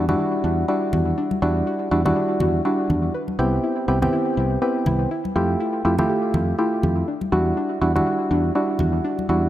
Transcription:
Already playing: E2
0.09 G3 D4 E4 F#4, low conga
0.19 F#4
0.44 E2 D4
0.68 G3 D4 E4 F#4
0.93 E2 F#4, low conga
1.18 D4
1.31 high conga
1.42 E2 G3 D4 E4 F#4
1.67 F#4
1.91 E2 G3 D4 E4 F#4
2.05 G3 D4 E4 F#4, low conga
2.16 D4
2.40 E2 F#4, low conga
2.65 G3 D4 E4 F#4
2.90 E2 D4, low conga
3.14 B4
3.28 high conga
3.39 C2 B3 C4 E4 G4
3.64 E4
3.88 C2 B3 C4 E4 G4 B4
4.02 B3 C4 E4 G4, low conga
4.13 E4
4.37 C2 E4
4.62 B3 C4 E4 G4 B4
4.86 C2 E4, low conga
5.11 E4
5.25 high conga
5.36 F2 A3 E4 F4 G4
5.60 E4
5.85 F2 A3 E4 F4 G4
5.99 A3 E4 F4 G4, low conga
6.09 G4
6.34 F2 E4, low conga
6.58 A3 E4 F4 G4
6.83 F2 G4, low conga
7.08 D4
7.21 high conga
7.32 E2 G3 D4 E4 F#4
7.57 D4
7.82 E2 G3 D4 E4 F#4
7.96 G3 D4 E4 F#4, low conga
8.06 F#4
8.31 E2 D4
8.55 G3 D4 E4 F#4
8.79 E2 F#4, low conga
9.04 D4
9.19 high conga
9.29 E2 G3 D4 E4 F#4

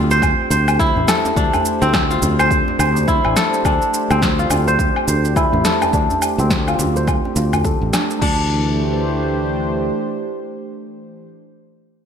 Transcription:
Already playing: D2 A3 C4 D4 F4 G4 A4 C5 D5
0.11 C5, shaker
0.22 kick, djembe tone, low woodblock, shaker
0.50 D2 C5, djembe tone, shaker
0.68 low woodblock, shaker
0.79 E4, kick, shaker
0.96 A1, djembe tone, djembe bass
1.08 A4, snare, low woodblock, shaker
1.25 djembe slap, djembe tone, shaker
1.36 D2 D4, kick, shaker
1.54 djembe bass, low woodblock, shaker
1.65 shaker
1.82 D2 C4, shaker
1.94 kick, snare, low woodblock, shaker
2.11 F4, shaker
2.22 D2, djembe slap, djembe tone, shaker
2.39 C5, low woodblock, shaker
2.51 kick, shaker
2.68 djembe slap, djembe tone
2.79 D2 C5, djembe slap, low woodblock, shaker
2.96 djembe tone, shaker
3.08 E4, kick, shaker
3.24 A1, djembe tone, low woodblock
3.36 A4, snare, shaker
3.54 shaker
3.65 D2 D4, kick, low woodblock, shaker
3.82 shaker
3.94 shaker
4.10 D2 C4, low woodblock, shaker
4.22 kick, snare, shaker
4.39 F4, shaker
4.50 D2, djembe slap, djembe tone, low woodblock, shaker
4.67 C5, shaker
4.79 kick, djembe tone, shaker
4.96 low woodblock
5.08 D2 C5, djembe tone, shaker
5.25 shaker
5.36 E4, kick, low woodblock, shaker
5.53 A1, djembe tone, djembe bass
5.65 A4, snare, shaker
5.82 djembe slap, djembe tone, low woodblock, shaker
5.93 D2 D4, kick, shaker
6.10 djembe bass, shaker
6.22 low woodblock, shaker
6.38 D2 C4, shaker
6.50 kick, snare, shaker
6.68 F4, low woodblock, shaker
6.79 D2, djembe slap, djembe tone, shaker
6.96 C5, shaker
7.08 kick, low woodblock, shaker
7.25 djembe slap, djembe tone
7.36 D2 F4, djembe slap, shaker
7.53 djembe tone, djembe bass, low woodblock, shaker
7.65 A4, kick, shaker
7.81 A1, djembe tone
7.93 D4, snare, low woodblock, shaker
8.11 shaker
8.21 D2 E3 D4, kick, crash
8.33 A3
8.42 D4
8.49 G4
8.58 C5

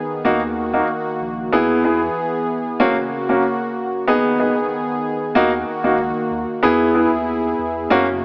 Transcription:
Already playing: D#3 B3 G#4
0.25 D#2 A#3 D#4 F#4
0.73 A#3 D#4 F#4
1.21 A#1
1.52 E2 E3 B3 E4 G#4
1.84 B3 E4 G#4
2.80 C#3 A#3 C#4 F#4
3.29 A#3 C#4 F#4
4.08 D#3 B3 D#4 G#4
4.40 B3 D#4 G#4
5.35 D#2 D#3 A#3 D#4 F#4
5.84 C#2 A#3 D#4 F#4
6.31 D#2
6.63 E2 B3 E4 G#4
6.95 B3 E4 G#4
7.12 D#2
7.59 E2
7.90 F#2 C#3 A#3 C#4 F#4

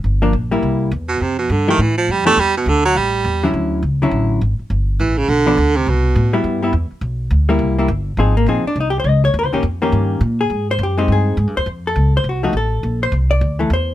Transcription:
0.04 G1
0.22 F3 A#3 D4
0.33 A#1
0.51 G3 A#3 E4
0.63 C2
0.91 E2
1.09 B2
1.21 F2 C3
1.39 B2
1.50 G2 D3
1.68 D#3 F3 A3 E4 G4
1.78 A2 E3
1.98 F3
2.08 F2 G3
2.25 E3 A3 B3 D4 G4
2.37 E2 G3
2.57 B2
2.66 D2 D3
2.85 F#3
2.95 A1 G3
3.24 E2
3.43 D3 F#3 C#4 E4
3.53 D2
3.83 C#2
4.02 D3 F#3 C#4 E4
4.11 A1
4.41 G#1
4.59 muted upright bass stroke
4.70 G1
5.00 A1 E3
5.18 C#3
5.28 B1 D3
5.46 F3 B3 D4
5.57 D2
5.76 C3
5.86 C2 B2
6.16 A2
6.33 G3 B3 E4
6.44 G2
6.62 G3 B3 E4
6.73 E2
6.91 muted upright bass stroke
7.01 B1
7.31 D2
7.49 G3 A#3 E4
7.59 C2
7.78 G3 A#3 E4
7.88 G1
8.17 G#1 F3 C4 D#4 G#4
8.37 A#3
8.46 A#1 F3 C4 D#4 G#4
8.65 D4, muted upright bass stroke
8.76 C2
8.80 D#4
8.90 G4
9.00 C5
9.04 C#2
9.09 D#5
9.25 C#5
9.34 D#2
9.39 C5
9.43 C#2
9.53 A#1 D#3 A#3 C#4 G4
9.63 F2
9.82 D#3 A#3 C#4 G4
9.92 G2
10.21 A#2
10.41 G#4
10.50 G#2
10.71 C5
10.79 F#2
10.83 G4
10.98 G#3 C4 D#4 G4
11.08 G2
11.12 G#4
11.37 G#2
11.47 G2
11.57 D#2 C5
11.66 F2
11.87 A4
11.96 C#2
12.17 C5
12.24 C2
12.29 F#4
12.43 F3 A3 D#4 F#4
12.53 A1 A4
12.83 A#1
13.03 C5
13.12 C2
13.31 D5
13.41 D2
13.59 E3 A3
13.70 E2 C5

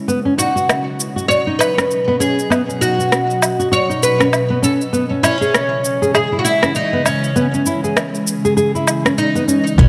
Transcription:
Already playing: C#4
0.08 B2 F#3 B3 D#5, shaker
0.25 C#4
0.38 D#4 F#4, shaker
0.56 F#4, shaker
0.69 cross-stick, low woodblock, shaker
1.00 shaker
1.16 F#4, shaker
1.28 F#4 C#5, shaker
1.47 D#4
1.59 B4, low woodblock, shaker
1.77 C#4, cross-stick, shaker
1.91 shaker
2.08 B3
2.20 C#4 G#4, shaker
2.39 shaker
2.50 B3, low woodblock, shaker
2.68 C#4, shaker
2.81 D#4 F#4, shaker
2.99 F#4, shaker
3.12 cross-stick, shaker
3.30 shaker
3.42 low woodblock, shaker
3.59 F#4, shaker
3.72 F#4 C#5, shaker
3.89 D#4, shaker
4.03 B4, shaker
4.20 C#4, cross-stick, shaker
4.33 low woodblock, shaker
4.50 B3
4.62 C#4 A4, shaker
4.81 shaker
4.93 C#3 E3 G#3 B3, shaker
5.10 C#4
5.23 C#4 E4, low woodblock, shaker
5.41 G#4, shaker
5.54 cross-stick, shaker
5.85 shaker
6.02 G#4, shaker
6.14 G#4, low woodblock, shaker
6.32 E4
6.39 F#4
6.45 E4, shaker
6.63 C#4, cross-stick, shaker
6.75 D#4, shaker
6.93 B3
7.05 C#4, low woodblock, shaker
7.24 shaker
7.36 B3 C#4, shaker
7.54 C#4, shaker
7.66 E4, shaker
7.84 G#4, shaker
7.97 cross-stick, low woodblock, shaker
8.15 shaker
8.27 shaker
8.45 G#4, shaker
8.57 G#4, shaker
8.75 E4, shaker
8.87 low woodblock, shaker
9.05 C#4, cross-stick, shaker
9.18 D#4, shaker
9.35 B3, shaker
9.48 C#4, shaker
9.67 shaker
9.78 B1 B3 C#4, kick, closed hi-hat, shaker

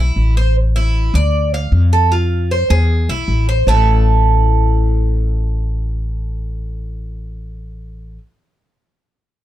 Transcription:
Already playing: B1
0.00 E4
0.16 A1
0.37 C5
0.76 E4
1.14 D2 D5
1.54 F5
1.72 F2
1.93 A4
2.12 F4
2.51 C5
2.70 E2 G#4
3.09 B1 E4
3.28 A1
3.49 C5
3.67 A1 A3 E4 A4

